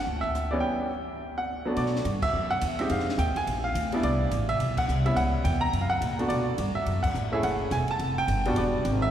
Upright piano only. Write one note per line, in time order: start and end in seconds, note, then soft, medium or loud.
0.00 0.21 F#5 loud
0.21 0.50 E5 medium
0.51 0.90 E3 medium
0.51 0.90 G3 medium
0.51 0.90 B3 medium
0.51 0.90 C#4 medium
0.51 0.61 D5 medium
0.60 1.43 G5 medium
1.38 1.74 F#5 medium
1.66 2.03 F#3 medium
1.66 2.03 A3 medium
1.66 2.03 B3 medium
1.66 2.04 D4 medium
1.77 2.03 D5 medium
2.23 2.52 E5 loud
2.50 2.77 F#5 loud
2.79 3.16 G#3 medium
2.79 3.17 C4 medium
2.79 3.17 D#4 medium
2.79 3.17 G4 medium
2.79 2.89 E5 medium
2.91 3.20 F5 medium
3.18 3.36 G5 medium
3.37 3.63 G#5 medium
3.64 4.05 F5 medium
3.93 4.30 G3 medium
3.93 4.30 B3 medium
3.93 4.30 D4 medium
3.93 4.31 E4 medium
4.04 4.30 D5 medium
4.49 4.75 E5 loud
4.78 5.07 F#5 medium
5.06 5.43 G3 medium
5.06 5.43 B3 medium
5.06 5.43 C#4 soft
5.06 5.44 E4 medium
5.06 5.17 E5 medium
5.16 5.46 F#5 loud
5.44 5.62 G5 medium
5.61 5.82 A#5 loud
5.81 5.90 F5 medium
5.90 6.31 F#5 loud
6.19 6.56 A3 medium
6.19 6.57 B3 medium
6.19 6.57 D4 medium
6.19 6.57 F#4 medium
6.28 6.56 D5 medium
6.75 7.05 E5 medium
7.03 7.30 F#5 medium
7.32 7.69 A3 medium
7.32 7.70 C#4 medium
7.32 7.70 E4 medium
7.32 7.71 G#4 medium
7.32 7.43 E5 medium
7.44 7.70 F#5 medium
7.72 7.88 G#5 medium
7.91 8.16 A5 medium
8.18 8.59 G5 loud
8.46 8.83 G3 medium
8.46 8.83 B3 medium
8.46 8.84 D4 medium
8.46 8.84 F#4 medium
8.57 8.83 D5 medium
9.02 9.11 E5 loud